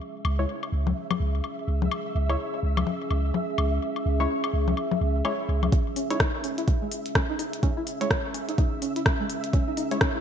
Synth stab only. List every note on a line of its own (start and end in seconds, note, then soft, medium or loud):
0.39 0.44 G#3 medium
0.39 0.44 E4 medium
0.39 0.44 C#5 medium
2.30 2.35 G#3 medium
2.30 2.35 E4 medium
2.30 2.35 C#5 loud
4.20 4.25 G#3 medium
4.20 4.25 E4 medium
4.20 4.25 C#5 loud
5.25 5.33 G#3 medium
5.25 5.33 E4 medium
5.25 5.33 C#5 medium
6.10 6.16 G#3 medium
6.10 6.16 E4 medium
6.10 6.16 C#5 loud
8.01 8.06 G#3 medium
8.01 8.06 E4 medium
8.01 8.06 C#5 loud
9.91 9.97 G#3 medium
9.91 9.97 E4 medium
9.91 9.97 C#5 loud